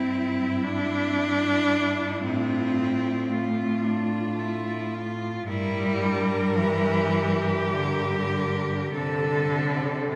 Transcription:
cello
Already playing: G2 C4 E4
0.63 D4
2.23 A2 C4 F4
3.30 A3 F4
3.84 D4
4.39 E4
4.93 F4
5.47 G2 G3 E4 A#4
6.02 D4
6.57 E3 G4
7.72 D3 A#4
8.92 C3 D3 A4
10.12 C3 A4

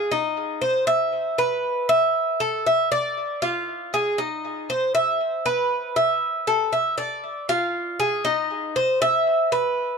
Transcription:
cuban tres
Already playing: G#4
0.11 D#4
0.61 C5
0.87 E5
1.38 B4
1.89 E5
2.40 A4
2.66 E5
2.92 D5
3.42 F4
3.94 G#4
4.18 D#4
4.70 C5
4.95 E5
5.46 B4
5.96 E5
6.47 A4
6.73 E5
6.98 D5
7.49 F4
8.00 G#4
8.25 D#4
8.76 C5
9.02 E5
9.52 B4

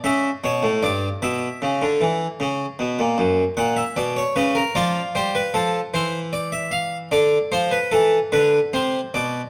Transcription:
harpsichord
0.04 C#3 E5
0.44 B2 C#5
0.63 A2
0.83 G2 D5
1.22 B2 E5
1.62 C#3
1.82 D3
2.01 E3
2.40 C#3
2.79 B2
2.99 A#2
3.18 F#2
3.57 A#2 F#5
3.77 E5
3.96 B2 D5
4.16 C#5
4.36 C#3 B4
4.55 A#4
4.75 F3 F4 D5
5.15 G3 C5
5.35 B4
5.54 F3 A4
5.94 E3 C5
6.33 D5
6.52 E5
6.71 F5
7.12 D3 D5
7.52 F3 C5
7.71 B4
7.92 E3 A4
8.32 D3 B4
8.73 C3 C5
9.14 B2 D5

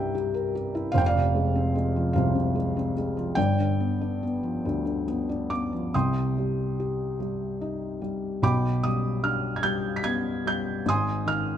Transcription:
felt piano
Already playing: C2 G2 C3 G3 E4 G4 A#4 E5 G5 A#5
0.15 G4
0.34 A#4
0.55 G4
0.75 E4
0.92 F1 F2 C5 F5
0.98 G5
1.06 D5 F5
1.15 C3
1.35 G#3
1.55 C4
1.75 G#3
1.96 F3
2.13 C2 C3 C5 F5
2.35 C3
2.55 G#3
2.76 C4
2.97 G#3
3.17 F3
3.35 G1 G2 D5 G5
3.59 D3
3.80 B3
4.01 D4
4.23 B3
4.43 F3
4.65 D2 D3
4.86 D3
5.08 B3
5.29 D4
5.50 B3 D6
5.73 F3
5.94 C2 C3 G5 C6 D#6
6.38 G3
6.80 G4
7.20 G3
7.61 D#4
8.02 G3
8.42 B1 B2 G5 B5 D6
8.83 G3 D#6
9.23 D4 F6
9.56 G#6
9.63 G3 G6
9.96 B6
10.04 B3 G#6
10.46 G3 G6
10.86 G#1 G#2 G#5 C6 D#6
11.26 D#3 F6

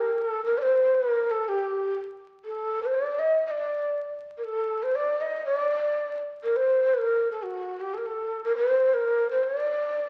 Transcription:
ney
Already playing: A#4
0.21 A4
0.45 A#4
0.58 D5
0.62 C5
0.95 A#4
1.31 A4
1.45 G4 A4
2.45 A4
2.82 C5
2.94 D5
3.19 D#5
3.46 D#5
3.51 D5
4.38 A#4
4.44 A4
4.83 C5
4.95 D5
5.21 D#5
5.45 C#5
5.56 D5
6.44 A#4
6.56 C5
6.94 B4
6.98 A#4
7.31 A4
7.44 F#4
7.80 G4
7.94 A4 A#4
8.06 A4
8.44 A#4
8.57 C5
8.94 A#4
9.31 C5
9.43 D5

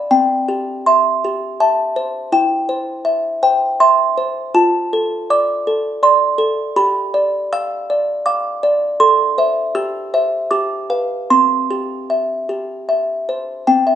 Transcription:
music box
Already playing: D5
0.11 C4 G5
0.48 G4
0.86 E5 C6
1.24 G4
1.60 E5 A5
1.96 C5
2.32 E4 G5
2.69 C5
3.05 E5
3.43 C5 G5
3.80 E5 C6
4.18 C5
4.54 F4 A5
4.93 A4
5.30 D5 D6
5.67 A4
6.03 D5 C6
6.38 A4
6.76 G4 B5
7.14 D5
7.53 F5 E6
7.90 D5
8.26 F5 D6
8.63 D5
9.00 A4 C6
9.38 C5 E5
9.75 G4 E6
10.14 C5 E5
10.51 G4 D6
10.90 B4 F5
11.30 C4 C6
11.71 G4
12.10 E5
12.49 G4
12.89 E5
13.29 C5
13.67 C4 G5
13.87 E5

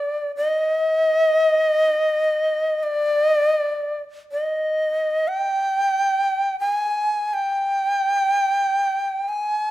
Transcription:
shakuhachi
Already playing: D5
0.36 D#5
2.83 D5
4.32 D#5
5.28 G5
6.60 G#5
7.34 G5
9.29 G#5

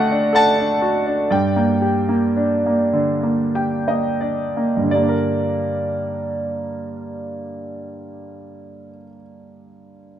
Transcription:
grand piano
Already playing: D3 A3 D4 F#4 A4 D5 D#5 F#5 G5 A5
0.11 D4
0.33 A4 F#5 A5
0.59 D4
0.82 F#4
1.06 D4
1.30 G2 D5 G5
1.56 A#3
1.82 G4
2.09 A#3
2.37 D4
2.66 A#3
2.93 D3
3.23 A#3
3.55 G4 G5
3.88 A#3 D#5
4.21 D4 D5
4.57 A#3
4.77 G2
4.83 D3
4.90 G3 D5
4.95 A#3
5.02 D4
5.09 A#4

